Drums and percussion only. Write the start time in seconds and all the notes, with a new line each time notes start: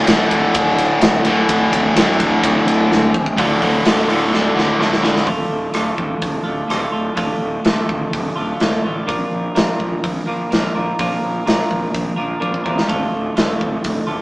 0.07 snare, ride
0.31 kick, ride
0.54 kick, ride
0.78 ride
1.01 snare, ride
1.25 ride
1.49 kick, ride
1.73 kick, ride
1.96 snare, ride
2.20 kick, ride
2.44 kick, ride
2.68 ride
2.92 snare
3.14 kick
3.26 kick
3.38 kick, open hi-hat
3.62 kick, open hi-hat
3.85 snare, open hi-hat
4.10 open hi-hat
4.34 snare
4.58 snare
4.81 snare
4.93 snare
5.04 snare
5.16 snare
5.27 kick, open hi-hat
5.74 cross-stick, open hi-hat
5.98 kick
6.22 kick, open hi-hat
6.70 cross-stick, open hi-hat
7.17 kick, open hi-hat
7.65 snare, open hi-hat
7.89 kick
8.13 kick, open hi-hat
8.60 snare, open hi-hat
9.09 kick, open hi-hat
9.56 snare, open hi-hat
9.80 kick
10.04 kick, open hi-hat
10.52 snare, open hi-hat
10.99 kick, open hi-hat
11.47 snare, open hi-hat
11.71 kick
11.95 kick, open hi-hat
12.42 kick
12.54 kick
12.66 kick
12.78 snare
12.89 kick, open hi-hat
13.37 snare, open hi-hat
13.61 kick
13.84 kick, open hi-hat